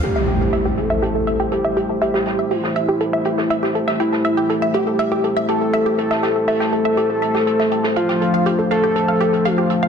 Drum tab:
CC |x---------------|----------------|----------------|----------------|
HH |x-x-x-x-x-xxx-x-|x-x-o-x-x-x-x-x-|x-x-x-x-x-xxx-x-|x-x-o-x-x-x-x-x-|
SD |-o--------------|-oo--o-----o-o-o|-o--------------|-oo--o-----o-o-o|

CC |----------------|
HH |x-x-x-x-x-xxx-x-|
SD |-o--------------|